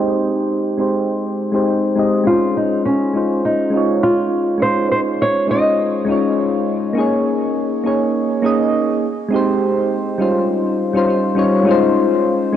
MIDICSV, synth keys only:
0, 0, Header, 1, 2, 480
1, 0, Start_track
1, 0, Tempo, 588235
1, 1844, Time_signature, 4, 2, 24, 8
1, 10253, End_track
2, 0, Start_track
2, 0, Title_t, "Synth keys"
2, 0, Program_c, 0, 88
2, 0, Control_c, 0, 64, 127
2, 0, Note_on_c, 0, 56, 82
2, 0, Note_on_c, 0, 60, 69
2, 0, Note_on_c, 0, 63, 74
2, 0, Note_on_c, 0, 67, 73
2, 0, Note_on_c, 0, 72, 85
2, 603, Note_off_c, 0, 56, 0
2, 611, Note_off_c, 0, 60, 0
2, 619, Note_off_c, 0, 63, 0
2, 625, Note_off_c, 0, 67, 0
2, 631, Note_on_c, 0, 56, 67
2, 633, Note_off_c, 0, 72, 0
2, 637, Note_on_c, 0, 60, 64
2, 649, Note_on_c, 0, 63, 61
2, 654, Note_on_c, 0, 67, 62
2, 660, Note_on_c, 0, 72, 74
2, 1091, Note_off_c, 0, 56, 0
2, 1094, Note_off_c, 0, 60, 0
2, 1100, Note_off_c, 0, 63, 0
2, 1102, Note_off_c, 0, 67, 0
2, 1105, Note_off_c, 0, 72, 0
2, 1239, Note_on_c, 0, 56, 72
2, 1247, Note_on_c, 0, 60, 69
2, 1255, Note_on_c, 0, 63, 69
2, 1262, Note_on_c, 0, 67, 73
2, 1269, Note_on_c, 0, 72, 83
2, 1330, Note_off_c, 0, 56, 0
2, 1334, Note_off_c, 0, 60, 0
2, 1338, Note_off_c, 0, 63, 0
2, 1342, Note_off_c, 0, 67, 0
2, 1345, Note_off_c, 0, 72, 0
2, 1352, Note_on_c, 0, 56, 58
2, 1360, Note_on_c, 0, 60, 56
2, 1369, Note_on_c, 0, 63, 61
2, 1375, Note_on_c, 0, 67, 57
2, 1383, Note_on_c, 0, 72, 70
2, 1572, Note_off_c, 0, 56, 0
2, 1575, Note_off_c, 0, 60, 0
2, 1580, Note_off_c, 0, 63, 0
2, 1583, Note_off_c, 0, 67, 0
2, 1587, Note_off_c, 0, 72, 0
2, 1595, Note_on_c, 0, 56, 77
2, 1603, Note_on_c, 0, 60, 69
2, 1610, Note_on_c, 0, 63, 74
2, 1619, Note_on_c, 0, 67, 69
2, 1627, Note_on_c, 0, 75, 86
2, 1663, Note_off_c, 0, 56, 0
2, 1667, Note_off_c, 0, 60, 0
2, 1671, Note_off_c, 0, 63, 0
2, 1675, Note_off_c, 0, 67, 0
2, 1679, Note_off_c, 0, 75, 0
2, 1825, Note_on_c, 0, 56, 82
2, 1839, Note_on_c, 0, 61, 71
2, 1853, Control_c, 0, 64, 0
2, 1856, Note_on_c, 0, 63, 71
2, 1870, Note_on_c, 0, 65, 70
2, 1883, Note_on_c, 0, 72, 85
2, 2016, Control_c, 0, 64, 127
2, 2528, Note_off_c, 0, 56, 0
2, 2535, Note_off_c, 0, 61, 0
2, 2543, Note_off_c, 0, 63, 0
2, 2550, Note_off_c, 0, 65, 0
2, 2557, Note_off_c, 0, 72, 0
2, 2557, Note_on_c, 0, 56, 68
2, 2565, Note_on_c, 0, 61, 60
2, 2572, Note_on_c, 0, 63, 64
2, 2580, Note_on_c, 0, 65, 66
2, 2587, Note_on_c, 0, 72, 73
2, 3010, Note_off_c, 0, 56, 0
2, 3018, Note_off_c, 0, 61, 0
2, 3019, Note_on_c, 0, 56, 78
2, 3021, Note_off_c, 0, 63, 0
2, 3026, Note_off_c, 0, 65, 0
2, 3029, Note_off_c, 0, 72, 0
2, 3034, Note_on_c, 0, 61, 74
2, 3049, Note_on_c, 0, 63, 71
2, 3065, Note_on_c, 0, 65, 75
2, 3079, Note_on_c, 0, 73, 83
2, 3725, Note_off_c, 0, 56, 0
2, 3732, Note_off_c, 0, 61, 0
2, 3734, Note_on_c, 0, 56, 76
2, 3740, Note_off_c, 0, 63, 0
2, 3748, Note_off_c, 0, 65, 0
2, 3750, Note_on_c, 0, 61, 72
2, 3755, Note_off_c, 0, 73, 0
2, 3767, Note_on_c, 0, 63, 71
2, 3782, Note_on_c, 0, 65, 71
2, 3797, Note_on_c, 0, 72, 88
2, 4443, Note_off_c, 0, 56, 0
2, 4451, Note_off_c, 0, 61, 0
2, 4459, Note_off_c, 0, 63, 0
2, 4463, Note_on_c, 0, 56, 72
2, 4466, Note_off_c, 0, 65, 0
2, 4473, Note_on_c, 0, 61, 63
2, 4474, Note_off_c, 0, 72, 0
2, 4481, Note_on_c, 0, 63, 62
2, 4488, Note_on_c, 0, 65, 64
2, 4494, Note_on_c, 0, 72, 76
2, 4927, Note_off_c, 0, 56, 0
2, 4932, Note_off_c, 0, 61, 0
2, 4935, Note_on_c, 0, 56, 83
2, 4936, Note_off_c, 0, 63, 0
2, 4940, Note_off_c, 0, 65, 0
2, 4943, Note_off_c, 0, 72, 0
2, 4949, Note_on_c, 0, 61, 73
2, 4965, Note_on_c, 0, 63, 78
2, 4980, Note_on_c, 0, 65, 74
2, 4994, Note_on_c, 0, 73, 87
2, 5643, Note_off_c, 0, 56, 0
2, 5650, Note_off_c, 0, 61, 0
2, 5658, Note_off_c, 0, 63, 0
2, 5658, Note_on_c, 0, 58, 84
2, 5666, Note_off_c, 0, 65, 0
2, 5672, Note_off_c, 0, 73, 0
2, 5672, Note_on_c, 0, 61, 75
2, 5689, Note_on_c, 0, 63, 74
2, 5695, Control_c, 0, 64, 0
2, 5699, Note_on_c, 0, 68, 75
2, 5716, Note_on_c, 0, 73, 88
2, 5841, Control_c, 0, 64, 127
2, 6364, Note_off_c, 0, 58, 0
2, 6371, Note_off_c, 0, 61, 0
2, 6380, Note_off_c, 0, 63, 0
2, 6385, Note_off_c, 0, 68, 0
2, 6393, Note_off_c, 0, 73, 0
2, 6396, Note_on_c, 0, 58, 71
2, 6402, Note_on_c, 0, 61, 61
2, 6412, Note_on_c, 0, 63, 63
2, 6417, Note_on_c, 0, 68, 64
2, 6425, Note_on_c, 0, 73, 78
2, 6853, Note_off_c, 0, 58, 0
2, 6856, Note_off_c, 0, 61, 0
2, 6862, Note_off_c, 0, 63, 0
2, 6864, Note_off_c, 0, 68, 0
2, 6868, Note_off_c, 0, 73, 0
2, 6872, Note_on_c, 0, 58, 82
2, 6878, Note_on_c, 0, 61, 74
2, 6887, Note_on_c, 0, 63, 75
2, 6895, Note_on_c, 0, 68, 72
2, 6904, Note_on_c, 0, 75, 87
2, 7345, Note_off_c, 0, 58, 0
2, 7348, Note_off_c, 0, 61, 0
2, 7352, Note_off_c, 0, 63, 0
2, 7356, Note_off_c, 0, 68, 0
2, 7361, Note_off_c, 0, 75, 0
2, 7375, Control_c, 0, 64, 0
2, 7530, Control_c, 0, 64, 127
2, 7577, Note_on_c, 0, 56, 83
2, 7593, Note_on_c, 0, 60, 77
2, 7607, Note_on_c, 0, 63, 75
2, 7622, Note_on_c, 0, 67, 78
2, 7637, Note_on_c, 0, 72, 90
2, 8284, Note_off_c, 0, 56, 0
2, 8292, Note_off_c, 0, 60, 0
2, 8299, Note_off_c, 0, 63, 0
2, 8306, Note_off_c, 0, 67, 0
2, 8307, Note_on_c, 0, 55, 68
2, 8314, Note_off_c, 0, 72, 0
2, 8316, Note_on_c, 0, 61, 66
2, 8323, Note_on_c, 0, 63, 67
2, 8330, Note_on_c, 0, 65, 70
2, 8339, Note_on_c, 0, 72, 81
2, 8575, Control_c, 0, 64, 0
2, 8698, Control_c, 0, 64, 127
2, 8769, Note_off_c, 0, 55, 0
2, 8774, Note_off_c, 0, 61, 0
2, 8777, Note_off_c, 0, 63, 0
2, 8781, Note_off_c, 0, 65, 0
2, 8785, Note_off_c, 0, 72, 0
2, 8921, Note_on_c, 0, 55, 76
2, 8930, Note_on_c, 0, 61, 75
2, 8939, Note_on_c, 0, 63, 72
2, 8945, Note_on_c, 0, 65, 72
2, 8952, Note_on_c, 0, 72, 91
2, 9012, Note_off_c, 0, 55, 0
2, 9016, Note_off_c, 0, 61, 0
2, 9020, Note_off_c, 0, 63, 0
2, 9023, Note_off_c, 0, 65, 0
2, 9027, Note_off_c, 0, 72, 0
2, 9031, Note_on_c, 0, 55, 69
2, 9039, Note_on_c, 0, 61, 59
2, 9045, Note_on_c, 0, 63, 60
2, 9053, Note_on_c, 0, 65, 59
2, 9060, Note_on_c, 0, 72, 77
2, 9251, Note_off_c, 0, 55, 0
2, 9255, Note_off_c, 0, 61, 0
2, 9258, Note_off_c, 0, 63, 0
2, 9261, Note_on_c, 0, 55, 85
2, 9262, Note_off_c, 0, 65, 0
2, 9265, Note_off_c, 0, 72, 0
2, 9271, Note_on_c, 0, 61, 79
2, 9278, Note_on_c, 0, 63, 76
2, 9286, Note_on_c, 0, 65, 77
2, 9293, Note_on_c, 0, 73, 94
2, 9337, Note_off_c, 0, 55, 0
2, 9341, Note_off_c, 0, 61, 0
2, 9345, Note_off_c, 0, 63, 0
2, 9349, Note_off_c, 0, 65, 0
2, 9353, Note_off_c, 0, 73, 0
2, 9493, Note_on_c, 0, 56, 87
2, 9505, Note_on_c, 0, 61, 80
2, 9521, Note_on_c, 0, 63, 82
2, 9536, Control_c, 0, 64, 0
2, 9536, Note_on_c, 0, 65, 77
2, 9553, Note_on_c, 0, 72, 100
2, 9697, Control_c, 0, 64, 127
2, 10202, Note_off_c, 0, 56, 0
2, 10208, Note_off_c, 0, 61, 0
2, 10216, Note_off_c, 0, 63, 0
2, 10221, Note_on_c, 0, 56, 81
2, 10224, Note_off_c, 0, 65, 0
2, 10232, Note_off_c, 0, 72, 0
2, 10253, Note_off_c, 0, 56, 0
2, 10253, End_track
0, 0, End_of_file